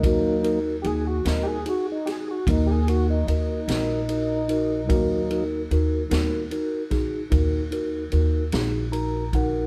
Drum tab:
RD |xxxxxxxxxxxx|xxxxxxxxxxxx|
SD |---o-o---o--|---o-o---o--|
BD |o-----o-----|o----oo----o|